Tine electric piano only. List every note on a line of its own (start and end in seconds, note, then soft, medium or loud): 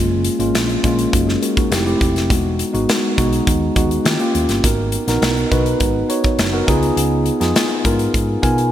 0.00 0.30 G#3 medium
0.00 0.30 A#3 medium
0.00 0.30 C#4 medium
0.00 0.31 F4 medium
0.39 0.74 G#3 medium
0.39 0.74 A#3 medium
0.39 0.74 C#4 medium
0.39 0.74 F4 medium
0.84 1.29 G#3 medium
0.84 1.30 A#3 medium
0.84 1.30 C#4 medium
0.84 1.14 F4 medium
1.13 1.27 D#4 soft
1.13 1.27 F#4 medium
1.27 1.42 F4 medium
1.27 1.41 G#4 medium
1.42 1.56 F#4 medium
1.42 1.56 A#4 medium
1.57 1.85 D#4 soft
1.57 1.85 F#4 medium
1.71 1.83 A3 medium
1.71 1.83 C4 medium
1.71 1.83 E4 medium
1.71 1.83 G4 medium
1.85 2.20 A3 medium
1.85 2.20 C4 medium
1.85 2.20 E4 medium
1.85 2.21 G4 medium
2.29 2.64 G#3 medium
2.29 2.64 B3 medium
2.29 2.64 D#4 medium
2.29 2.64 F#4 medium
2.73 3.08 G#3 medium
2.73 3.08 B3 medium
2.73 3.08 D#4 medium
2.73 3.08 F#4 medium
3.17 3.63 G#3 medium
3.17 3.63 B3 medium
3.17 3.64 D#4 medium
3.17 3.64 F#4 medium
3.76 4.05 G#3 medium
3.76 4.05 B3 medium
3.76 4.05 D#4 medium
3.76 4.06 F#4 medium
4.04 4.16 A#3 medium
4.04 4.17 C#4 medium
4.04 4.17 F4 medium
4.04 4.17 G4 medium
4.19 4.54 A#3 medium
4.19 4.54 C#4 medium
4.19 4.54 F4 medium
4.19 4.55 G4 medium
4.63 4.98 B3 medium
4.63 4.98 D#4 medium
4.63 4.98 F#4 medium
4.63 4.98 A#4 medium
5.07 5.42 B3 medium
5.07 5.42 D#4 medium
5.07 5.42 F#4 medium
5.07 5.43 A#4 medium
5.51 5.97 B3 medium
5.51 5.97 D#4 medium
5.51 5.97 F#4 medium
5.51 5.98 B4 medium
6.09 6.44 B3 medium
6.09 6.44 D#4 medium
6.09 6.44 F#4 medium
6.09 6.44 C#5 medium
6.53 6.66 B3 medium
6.53 6.66 D#4 medium
6.53 6.68 F#4 medium
6.53 6.68 A#4 loud
6.67 7.26 B3 medium
6.67 7.26 D#4 medium
6.67 7.26 F4 medium
6.67 7.27 G#4 loud
7.40 7.75 B3 medium
7.40 7.75 D#4 medium
7.40 7.75 F4 medium
7.40 7.76 G#4 medium
7.84 8.30 B3 medium
7.84 8.31 D#4 medium
7.84 8.31 F4 medium
7.84 8.31 A#4 medium
8.42 8.72 B3 medium
8.42 8.72 D#4 medium
8.42 8.72 F4 medium
8.42 8.72 A#4 medium
8.42 8.70 G#5 medium